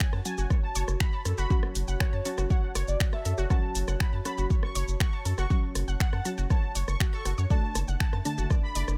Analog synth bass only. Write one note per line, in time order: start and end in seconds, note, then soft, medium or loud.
0.13 0.20 F#2 medium
0.38 0.45 F#1 medium
0.75 0.83 F#1 medium
0.88 0.95 F#1 medium
1.25 1.33 F#2 loud
1.38 1.45 F#1 medium
1.75 1.83 F#1 medium
1.88 1.95 F#1 medium
2.13 2.20 F#2 medium
2.38 2.45 F#1 medium
2.75 2.83 F#1 loud
2.88 2.95 F#1 medium
3.25 3.33 F#2 loud
3.38 3.45 F#1 medium
3.75 3.83 F#1 medium
3.88 3.95 F#1 medium
4.13 4.20 F#2 medium
4.38 4.45 F#1 medium
4.75 4.83 F#1 medium
4.88 4.95 F#1 medium
5.25 5.33 F#2 loud
5.38 5.45 F#1 medium
5.75 5.83 F#1 medium
5.88 5.95 F#1 medium
6.13 6.20 F#2 medium
6.38 6.46 F#1 medium
6.75 6.83 F#1 medium
6.88 6.96 F#1 medium
7.25 7.33 F#1 loud
7.38 7.46 F#2 medium
7.75 7.83 F#1 medium
7.88 7.96 F#1 medium
8.13 8.21 F#2 medium
8.38 8.46 F#1 medium
8.75 8.83 F#1 medium
8.88 8.95 F#1 medium